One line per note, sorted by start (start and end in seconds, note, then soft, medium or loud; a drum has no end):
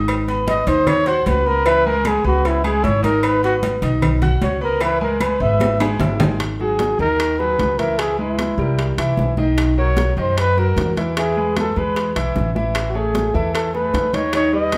0.00 0.61 G#1 medium
0.00 0.21 D#4 medium
0.00 0.21 D#5 medium
0.00 0.22 D#6 medium
0.08 cowbell loud
0.08 high conga soft
0.08 low agogo loud
0.08 claves medium
0.28 0.60 B3 medium
0.28 0.61 B4 medium
0.28 0.61 B5 medium
0.28 cowbell medium
0.28 high conga soft
0.47 0.70 D#5 medium
0.47 cowbell medium
0.47 high conga loud
0.47 low agogo medium
0.67 1.22 D#2 loud
0.67 1.00 D#4 medium
0.67 0.89 C5 loud
0.67 1.00 D#5 medium
0.67 1.00 D#6 medium
0.67 cowbell medium
0.67 low agogo medium
0.87 1.09 C#5 loud
0.87 cowbell loud
0.87 high conga soft
0.87 low conga medium
0.87 low agogo loud
0.87 claves medium
1.06 1.39 F#4 medium
1.06 1.28 C5 medium
1.06 1.39 F#5 medium
1.06 1.40 F#6 medium
1.06 cowbell medium
1.06 high conga soft
1.26 2.19 C#2 medium
1.26 1.49 B4 medium
1.26 cowbell medium
1.26 high conga medium
1.26 low timbale medium
1.26 low agogo medium
1.46 1.62 B3 medium
1.46 1.68 A#4 medium
1.46 1.62 B4 medium
1.46 1.62 B5 medium
1.46 high conga soft
1.66 1.82 E3 medium
1.66 1.82 E4 medium
1.66 1.88 B4 loud
1.66 1.83 E5 medium
1.66 cowbell loud
1.66 high conga soft
1.66 low agogo loud
1.66 claves medium
1.85 2.18 G#3 medium
1.85 2.18 G#4 medium
1.85 2.09 A#4 loud
1.85 2.19 G#5 medium
1.85 high conga soft
2.05 2.26 G#4 medium
2.05 cowbell medium
2.05 high conga medium
2.05 low agogo loud
2.05 claves medium
2.24 2.80 C#2 loud
2.24 2.57 B3 medium
2.24 2.48 F#4 medium
2.24 2.57 B4 medium
2.24 2.57 B5 medium
2.24 high conga soft
2.45 2.65 E4 medium
2.45 cowbell loud
2.45 high conga soft
2.45 low agogo medium
2.64 2.80 G#3 medium
2.64 2.80 G#4 medium
2.64 2.86 G#4 loud
2.64 2.81 G#5 medium
2.64 high conga soft
2.64 low agogo loud
2.64 claves medium
2.83 3.76 G#1 medium
2.83 3.00 E4 medium
2.83 3.03 C#5 loud
2.83 3.00 E5 medium
2.83 3.00 E6 medium
2.83 cowbell medium
2.83 high conga medium
3.03 3.35 D#4 medium
3.03 3.26 A#4 loud
3.03 3.36 D#5 medium
3.03 3.36 D#6 medium
3.03 cowbell medium
3.03 high conga medium
3.03 low agogo medium
3.23 3.44 B4 loud
3.23 cowbell loud
3.23 high conga soft
3.23 low agogo loud
3.23 claves medium
3.43 3.75 B3 medium
3.43 3.56 F#4 medium
3.43 3.75 B4 medium
3.43 3.75 B5 medium
3.43 cowbell medium
3.43 high conga soft
3.63 cowbell medium
3.63 high conga loud
3.63 low agogo medium
3.82 4.38 B1 loud
3.82 4.15 D#4 medium
3.82 4.15 D#5 medium
3.82 4.15 D#6 medium
3.82 cowbell medium
3.82 low agogo medium
4.02 cowbell loud
4.02 high conga soft
4.02 low conga medium
4.02 low agogo loud
4.02 claves medium
4.22 4.54 F#4 medium
4.22 4.54 F#5 medium
4.22 4.55 F#6 medium
4.22 cowbell medium
4.22 high conga soft
4.22 low conga medium
4.41 5.34 C#2 medium
4.41 4.61 C#5 medium
4.41 cowbell medium
4.41 high conga medium
4.41 low timbale medium
4.41 low agogo medium
4.61 4.77 B3 medium
4.61 4.84 A#4 medium
4.61 4.78 B4 medium
4.61 4.78 B5 medium
4.61 high conga soft
4.81 4.97 E3 medium
4.81 4.97 E4 medium
4.81 5.01 B4 loud
4.81 4.98 E5 medium
4.81 cowbell loud
4.81 high conga soft
4.81 low agogo loud
4.81 claves medium
5.01 5.34 G#3 medium
5.01 5.34 G#4 medium
5.01 5.23 A#4 medium
5.01 5.34 G#5 medium
5.01 high conga soft
5.21 5.43 B4 medium
5.21 cowbell medium
5.21 high conga medium
5.21 low agogo loud
5.21 claves medium
5.40 5.96 G#1 loud
5.40 5.73 B3 medium
5.40 5.73 B4 medium
5.40 5.81 E5 loud
5.40 5.74 B5 medium
5.40 high conga soft
5.60 cowbell loud
5.60 high bongo loud
5.60 high conga medium
5.60 low agogo medium
5.80 5.97 G#3 medium
5.80 5.97 G#4 medium
5.80 5.97 G#5 medium
5.80 high bongo medium
5.80 high timbale loud
5.80 low agogo loud
5.80 claves medium
5.99 6.93 G#1 medium
5.99 6.17 E4 medium
5.99 6.17 E5 medium
5.99 6.17 E6 medium
5.99 cowbell medium
5.99 low bongo medium
5.99 low conga medium
5.99 low timbale loud
6.20 6.36 G#3 medium
6.20 6.37 G#4 medium
6.20 6.37 G#5 medium
6.20 cowbell medium
6.20 low bongo medium
6.20 low conga medium
6.20 low timbale loud
6.20 low agogo medium
6.40 high bongo medium
6.40 high conga soft
6.40 high timbale medium
6.40 claves medium
6.60 6.92 F#3 medium
6.60 6.93 F#4 medium
6.60 6.93 G#4 medium
6.60 6.97 G#4 medium
6.60 high conga soft
6.79 high bongo medium
6.79 high conga medium
6.79 high timbale medium
6.99 7.55 D#2 medium
6.99 7.32 D#3 medium
6.99 7.32 D#4 medium
6.99 7.41 A#4 loud
6.99 7.33 D#5 medium
6.99 high bongo soft
6.99 high conga soft
7.20 high bongo medium
7.20 high conga soft
7.20 high timbale medium
7.20 claves medium
7.39 7.72 F#3 medium
7.39 7.72 F#4 medium
7.39 7.72 G#4 medium
7.39 7.80 B4 medium
7.39 high bongo soft
7.39 high conga soft
7.59 8.52 C#2 medium
7.59 high bongo soft
7.59 low bongo medium
7.59 high conga medium
7.59 high timbale medium
7.79 7.95 E3 medium
7.79 7.95 E4 medium
7.79 8.00 A#4 medium
7.79 7.96 E5 medium
7.79 high bongo soft
7.79 high conga medium
7.79 high timbale medium
7.98 8.15 E3 medium
7.98 8.15 E4 medium
7.98 8.18 G#4 medium
7.98 8.16 E5 medium
7.98 high bongo medium
7.98 high conga soft
7.98 high timbale medium
7.98 claves medium
8.19 8.51 G#3 medium
8.19 8.94 E4 medium
8.19 8.51 G#4 medium
8.19 8.51 B4 medium
8.19 high conga soft
8.38 high bongo medium
8.38 high conga medium
8.38 high timbale medium
8.38 claves medium
8.58 8.95 C2 medium
8.58 8.91 G3 medium
8.58 8.91 G4 medium
8.58 8.91 A#4 medium
8.58 high bongo soft
8.58 high conga soft
8.78 high bongo medium
8.78 high conga soft
8.78 high timbale medium
8.98 9.16 C2 medium
8.98 9.31 E3 medium
8.98 9.31 E4 medium
8.98 9.31 E5 medium
8.98 high bongo soft
8.98 high conga soft
8.98 high timbale medium
8.98 claves medium
9.17 10.11 B1 medium
9.17 high bongo soft
9.17 low bongo medium
9.17 high conga medium
9.37 9.70 D#3 medium
9.37 9.70 D#4 medium
9.37 9.71 D#5 medium
9.37 high bongo soft
9.37 high conga medium
9.58 high bongo medium
9.58 high timbale medium
9.58 claves medium
9.77 10.10 F#3 medium
9.77 10.10 F#4 medium
9.77 10.10 A#4 medium
9.77 10.15 C#5 loud
9.77 high conga soft
9.97 high bongo medium
9.97 high conga medium
9.97 high timbale medium
10.17 10.72 F#2 medium
10.17 10.50 D#3 medium
10.17 10.50 D#4 medium
10.17 10.37 C5 medium
10.17 10.50 D#5 medium
10.17 high bongo soft
10.17 high conga soft
10.37 10.61 B4 loud
10.37 high bongo medium
10.37 high conga soft
10.37 high timbale medium
10.37 claves medium
10.57 10.89 F#3 medium
10.57 10.90 F#4 medium
10.57 10.90 A#4 medium
10.57 10.98 A#4 medium
10.57 high bongo soft
10.57 high conga soft
10.76 11.70 E2 medium
10.76 high bongo soft
10.76 low bongo medium
10.76 high conga medium
10.76 high timbale medium
10.76 low timbale medium
10.97 11.13 E3 medium
10.97 11.13 E4 medium
10.97 11.13 E5 medium
10.97 high bongo soft
10.97 high conga medium
10.97 high timbale medium
11.17 11.33 E3 medium
11.17 11.33 E4 medium
11.17 11.55 G#4 medium
11.17 11.34 E5 medium
11.17 high bongo medium
11.17 high conga soft
11.17 high timbale medium
11.17 claves medium
11.37 11.69 G#3 medium
11.37 11.69 G#4 medium
11.37 11.69 B4 medium
11.37 high conga soft
11.57 11.80 A4 medium
11.57 high bongo medium
11.57 high conga medium
11.57 high timbale medium
11.57 claves medium
11.76 12.13 E2 medium
11.76 12.09 G#3 medium
11.76 12.09 G#4 medium
11.76 12.09 B4 medium
11.76 12.17 B4 medium
11.76 high bongo soft
11.76 high conga soft
11.96 high bongo medium
11.96 high conga soft
11.96 high timbale medium
12.16 12.34 B1 medium
12.16 12.48 E3 medium
12.16 12.48 E4 medium
12.16 12.49 E5 medium
12.16 high bongo soft
12.16 high conga soft
12.16 high timbale medium
12.16 claves medium
12.36 13.29 A1 medium
12.36 high bongo soft
12.36 low bongo medium
12.36 high conga medium
12.55 12.88 E3 medium
12.55 12.88 E4 medium
12.55 12.88 E5 medium
12.55 high bongo soft
12.55 high conga medium
12.75 high bongo medium
12.75 high timbale medium
12.75 claves medium
12.89 12.98 F#4 medium
12.94 13.27 A3 medium
12.94 13.27 G#4 medium
12.94 13.36 G#4 medium
12.94 13.28 C#5 medium
12.94 high conga soft
13.15 high bongo medium
13.15 high conga medium
13.15 high timbale medium
13.34 13.90 E2 medium
13.34 13.67 E3 medium
13.34 13.67 E4 medium
13.34 13.54 A4 medium
13.34 13.67 E5 medium
13.34 high bongo soft
13.34 high conga soft
13.54 13.73 A4 medium
13.54 high bongo medium
13.54 high conga soft
13.54 high timbale medium
13.54 claves medium
13.74 14.07 A3 medium
13.74 14.07 G#4 medium
13.74 14.07 A4 medium
13.74 14.16 B4 medium
13.74 high bongo soft
13.74 high conga soft
13.93 14.78 D#2 medium
13.93 high bongo soft
13.93 low bongo medium
13.93 high conga medium
13.93 high timbale medium
14.13 14.30 D#3 medium
14.13 14.30 D#4 medium
14.13 14.34 C#5 medium
14.13 14.30 D#5 medium
14.13 high bongo soft
14.13 high conga medium
14.13 high timbale medium
14.33 14.49 D#3 medium
14.33 14.50 D#4 medium
14.33 14.53 C#5 loud
14.33 14.50 D#5 medium
14.33 high bongo medium
14.33 high conga soft
14.33 high timbale medium
14.33 claves medium
14.53 14.78 G3 medium
14.53 14.78 G4 medium
14.53 14.78 B4 medium
14.53 14.78 D#5 loud
14.53 high conga soft
14.72 high bongo medium
14.72 high conga medium
14.72 high timbale medium
14.72 claves medium